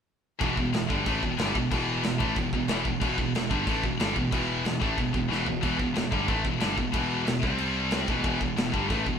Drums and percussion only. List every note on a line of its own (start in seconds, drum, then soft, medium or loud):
0.41 kick loud
0.41 crash medium
0.57 kick medium
0.74 snare loud
0.74 crash medium
0.90 kick loud
1.06 kick loud
1.06 crash medium
1.23 kick medium
1.38 snare loud
1.38 crash medium
1.55 kick medium
1.71 kick loud
1.71 crash medium
2.04 snare loud
2.04 crash medium
2.20 kick loud
2.36 kick medium
2.36 crash medium
2.53 kick medium
2.68 snare loud
2.68 crash medium
2.85 kick loud
3.01 kick loud
3.01 crash medium
3.18 kick loud
3.35 snare loud
3.35 crash medium
3.51 kick loud
3.67 kick loud
3.67 crash medium
3.83 kick medium
4.00 snare loud
4.00 crash medium
4.16 kick medium
4.32 kick loud
4.32 crash medium
4.65 snare loud
4.65 crash medium
4.82 kick loud
4.98 kick medium
4.98 crash medium
5.14 kick loud
5.32 snare medium
5.46 floor tom medium
5.63 kick loud
5.63 crash medium
5.79 kick medium
5.95 snare loud
5.95 crash medium
6.12 kick loud
6.28 kick loud
6.28 crash medium
6.45 kick loud
6.60 snare loud
6.60 crash medium
6.78 kick loud
6.93 kick loud
6.93 crash medium
7.27 snare loud
7.27 crash medium
7.43 kick loud
7.58 crash medium
7.91 snare loud
7.91 crash medium
8.08 kick loud
8.24 kick loud
8.24 crash medium
8.41 kick loud
8.57 snare loud
8.57 crash medium
8.74 kick loud
8.90 kick loud
8.90 crash medium
9.06 kick medium